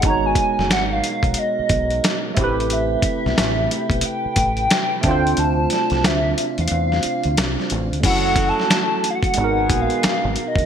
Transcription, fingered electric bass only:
X:1
M:4/4
L:1/16
Q:"Swing 16ths" 1/4=90
K:G#phr
V:1 name="Fingered electric bass" clef=bass
G,,,2 z F,,, G,,,2 z B,,, z2 B,,,2 z2 A,,,2- | A,,,2 z B,,, A,,,2 z B,,, z2 A,,,2 z2 =D,,2 | =D,,2 z =C,, D,,2 z E,, E,,2 z D,, C,, z A,,, D,, | F,,,3 z4 z G,,,2 ^A,,, z2 G,,, z E,,, |]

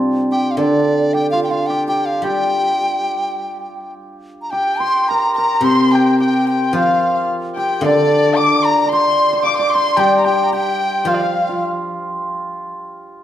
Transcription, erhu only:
X:1
M:4/4
L:1/16
Q:1/4=109
K:none
V:1 name="Erhu"
z16 | z16 | g4 _b2 b2 c'2 g2 g2 g2 | f3 f z2 g2 d4 d'2 _b2 |
c'4 d' d' c'2 g3/2 _b/2 g3/2 b/2 g4 | f/2 d/2 f3 z12 |]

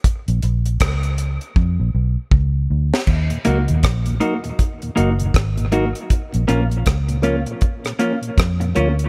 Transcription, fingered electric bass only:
X:1
M:4/4
L:1/16
Q:"Swing 16ths" 1/4=79
K:Ebm
V:1 name="Fingered electric bass" clef=bass
z B,,, B,,,2 D,,3 z F,, B,,, C,, z D,,2 =D,, z | E,, z D,, E,, B,,,2 z4 G,,,2 A,,,3 z | z B,,, B,,,2 D,,3 z4 z F,,2 =D,,2 |]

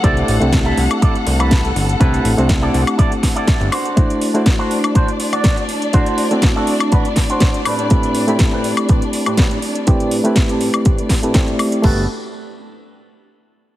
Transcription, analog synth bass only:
X:1
M:4/4
L:1/16
Q:"Swing 16ths" 1/4=122
K:G
V:1 name="Analog synth bass" clef=bass
C,,2 A,,, C,,3 C,, z3 C,,4 G,,,2 | C,,2 A,,, C,,3 C,, z6 G,,, z2 | z16 | z16 |
z16 | z16 | G,,,2 z12 z2 |]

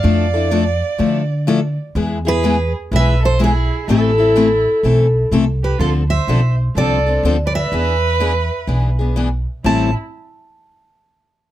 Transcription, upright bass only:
X:1
M:4/4
L:1/8
Q:"Swing" 1/4=125
K:Am
V:1 name="Upright bass" clef=bass
F,,4 D,4 | E,,4 B,,,4 | A,,,4 B,,,2 C,,2 | D,,2 B,,,2 C,,2 D,,2 |
E,,4 B,,,4 | A,,, z6 z |]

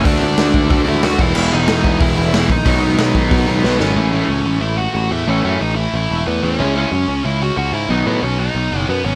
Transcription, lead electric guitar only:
X:1
M:4/4
L:1/8
Q:1/4=183
K:Alyd
V:1 name="Lead electric guitar"
[=D=d] [Dd]4 [Ee] [Ff] [Ee]- | [Ee] [Dd]3 [Ee]3 [Dd]- | [Dd]6 [B,B] [Cc]- | [Cc]4 [Ee] [Ff] [Ff] [Ee] |
[Cc] [Cc] [Dd] [Ee]3 [B,B] [Cc]- | [Cc]4 [Ee] [Ff] [Ff] [Ee] | [Dd] [B,B] [Cc] [Dd]3 [B,B] [Cc] |]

